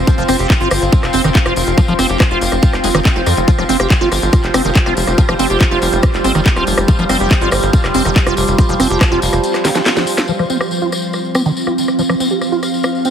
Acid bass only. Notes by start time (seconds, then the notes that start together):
0.07 F3
0.18 F3
0.29 C4
0.39 G4
0.61 F4
1.14 C4
1.24 D#3
1.46 F4
1.78 F3
1.88 F3
1.99 C4
2.10 G4
2.31 F4
2.84 G#3
2.95 D#3
3.16 F4
3.37 D#3
3.48 F3
3.58 F3
3.69 C4
3.80 G4
4.01 F4
4.54 C4
4.65 D#3
4.86 F4
5.18 F3
5.29 F3
5.39 C4
5.50 G4
5.71 F4
6.24 C4
6.35 D#3
6.56 F4
6.88 F3
6.99 F3
7.10 C4
7.20 G4
7.41 F4
7.95 C4
8.05 D#3
8.27 F4
8.58 F3
8.69 F3
8.80 C4
8.90 G4
9.12 F4
9.65 D#3
9.75 F3
9.97 F3
10.29 F3
10.39 F3
10.50 C4
10.61 G4
10.82 F4
11.35 C4
11.46 D#3
11.67 F4
11.99 F3
12.10 F3
12.20 C4
12.31 G4
12.52 F4
13.05 C4